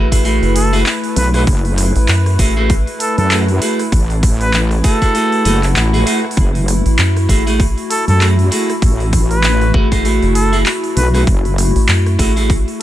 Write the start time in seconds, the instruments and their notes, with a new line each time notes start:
Already playing: analog synth bass A1, ambient pad A3 E4 B4
0.12 clean electric guitar A3 E4 F#4 G#4, kick, open hi-hat
0.24 clean electric guitar A3 E4 F#4 G#4, open hi-hat
0.42 analog synth bass F#1, open hi-hat
0.56 trumpet A4, open hi-hat
0.73 clean electric guitar A3 E4 F#4 G#4, open hi-hat
0.86 clap, open hi-hat
1.04 open hi-hat
1.16 wobble bass B1, trumpet B4, open hi-hat
1.34 clean electric guitar A3 E4 F#4 G#4, trumpet B4, cross-stick, open hi-hat
1.47 wobble bass F#1, kick, open hi-hat
1.65 open hi-hat
1.78 cross-stick, open hi-hat
1.96 analog synth bass A1, open hi-hat
2.08 analog synth bass F#2, clap, open hi-hat
2.26 cross-stick, open hi-hat
2.39 analog synth bass A1, clean electric guitar A3 E4 F#4 G#4, kick, open hi-hat
2.57 clean electric guitar A3 E4 F#4 G#4
2.70 kick, open hi-hat
2.87 open hi-hat
3.00 trumpet A4, open hi-hat
3.18 wobble bass F#2, trumpet A4, open hi-hat
3.31 clean electric guitar A3 E4 F#4 G#4, clap, open hi-hat
3.48 open hi-hat
3.62 clean electric guitar A3 E4 F#4 G#4, open hi-hat
3.79 cross-stick, open hi-hat
3.92 wobble bass A1, kick, open hi-hat
4.10 open hi-hat
4.23 kick, cross-stick, open hi-hat
4.41 trumpet B4, open hi-hat
4.53 clap, open hi-hat
4.71 cross-stick, open hi-hat
4.84 clean electric guitar A3 E4 F#4 G#4, trumpet A4, kick, open hi-hat
5.02 clean electric guitar A3 E4 F#4 G#4, kick, open hi-hat
5.14 clean electric guitar A3 E4 F#4 G#4, open hi-hat, swell
5.32 open hi-hat
5.45 wobble bass F#1, clean electric guitar A3 E4 F#4 G#4, open hi-hat
5.63 clap, open hi-hat
5.76 wobble bass A1, clap, open hi-hat
5.93 clean electric guitar A3 E4 F#4 G#4, open hi-hat
6.06 clean electric guitar A3 E4 F#4 G#4, open hi-hat
6.25 cross-stick
6.31 open hi-hat
6.37 wobble bass F#1, ambient pad F#4, kick, open hi-hat
6.55 open hi-hat
6.68 cross-stick, open hi-hat
6.86 analog synth bass A1, open hi-hat
6.99 analog synth bass F#2, clap, open hi-hat
7.17 cross-stick, open hi-hat
7.29 analog synth bass A1, clean electric guitar A3 E4 F#4 G#4, kick, open hi-hat
7.47 clean electric guitar A3 E4 F#4 G#4, open hi-hat
7.60 kick, open hi-hat
7.78 open hi-hat
7.90 trumpet A4, open hi-hat
8.08 wobble bass F#2, trumpet A4, open hi-hat
8.21 clean electric guitar A3 E4 F#4 G#4, clap, open hi-hat
8.39 open hi-hat
8.51 clean electric guitar A3 E4 F#4 G#4, open hi-hat
8.70 cross-stick, open hi-hat
8.82 wobble bass A1, kick, open hi-hat
9.00 open hi-hat
9.13 kick, cross-stick, open hi-hat
9.31 trumpet B4, open hi-hat
9.43 clap, open hi-hat
9.61 cross-stick, open hi-hat
9.74 analog synth bass A1, clean electric guitar A3 E4 F#4 G#4, kick
9.92 clean electric guitar A3 E4 F#4 G#4, kick, open hi-hat
10.05 clean electric guitar A3 E4 F#4 G#4, open hi-hat
10.22 analog synth bass F#1, open hi-hat
10.35 trumpet A4, open hi-hat
10.53 clean electric guitar A3 E4 F#4 G#4, open hi-hat
10.66 clap, open hi-hat
10.84 open hi-hat
10.96 wobble bass B1, trumpet B4, open hi-hat
11.14 clean electric guitar A3 E4 F#4 G#4, trumpet B4, cross-stick, open hi-hat
11.27 wobble bass F#1, kick, open hi-hat
11.45 open hi-hat
11.58 cross-stick, open hi-hat
11.76 analog synth bass A1, open hi-hat
11.88 analog synth bass F#2, clap, open hi-hat
12.06 cross-stick, open hi-hat
12.19 analog synth bass A1, clean electric guitar A3 E4 F#4 G#4, kick, open hi-hat
12.36 clean electric guitar A3 E4 F#4 G#4, open hi-hat
12.50 kick, open hi-hat
12.68 open hi-hat